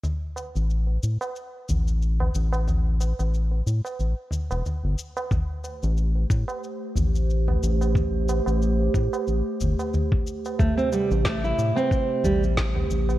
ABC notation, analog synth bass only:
X:1
M:4/4
L:1/16
Q:"Swing 16ths" 1/4=91
K:Am
V:1 name="Analog synth bass" clef=bass
z3 A,,,3 A,, z3 A,,,4 A,,,2- | A,,,3 A,,,3 A,, z A,,, z2 E,,, z G,,, z2 | z3 A,,,3 A,, z3 A,,,4 A,,,2- | A,,,3 A,,,3 A,, z A,,, z G,,, z4 z |
z3 A,,,3 A,, z3 A,,,4 A,,,2 |]